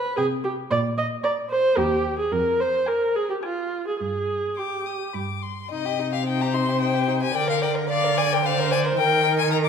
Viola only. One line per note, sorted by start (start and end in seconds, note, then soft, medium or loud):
0.00 0.17 B4 medium
0.17 0.25 G#4 medium
0.44 0.52 G4 medium
0.71 0.79 D5 medium
0.98 1.06 D#5 medium
1.24 1.32 D5 medium
1.50 1.79 C5 medium
1.77 2.18 G4 medium
2.19 2.34 G#4 medium
2.32 2.62 A#4 medium
2.60 2.89 C5 medium
2.88 3.17 A#4 medium
3.15 3.29 G#4 medium
3.30 3.35 G4 soft
3.43 3.85 F4 medium
3.87 4.00 G#4 soft
4.01 4.60 G#4 medium
4.58 5.15 G4 soft
6.27 7.31 C5 medium
7.35 7.89 A#4 medium
7.90 8.43 D5 medium
8.45 9.00 C5 medium
8.98 9.69 A#4 medium